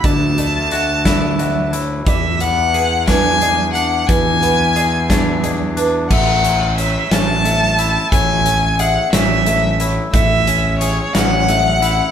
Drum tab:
CC |------|------|------|x-----|
HH |xxxxxx|xxxxxx|xxxxxx|-xxxxx|
SD |---o--|---o--|---o--|---o--|
BD |o--o--|o--o--|o--o--|o-----|

CC |------|------|
HH |xxxxxx|xxxxxx|
SD |---o--|---o--|
BD |o-----|o-----|